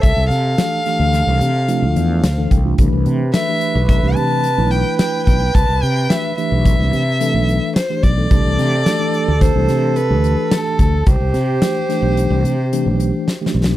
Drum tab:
HH |x--x--x--x--x--x--x--x--x--x--|x--x--x--x--x--x--x--x--x--x--|x--x--x--x--x--x--x--x--x--x--|x--x--x--x--x--x--x--x--x--x--|
SD |---o--o--o--o-----------o-----|------o-----------------o-----|------o-----------------o-----|---o--o-----o--o--------o-----|
BD |o--------------------------o--|o-----------o--------------o--|o-----------o--------------o--|o-----------o--------------o--|

HH |x--x--x--x--x--x--x--x--------|
SD |---o--o--o--------------o-o-o-|
BD |o-----------------------------|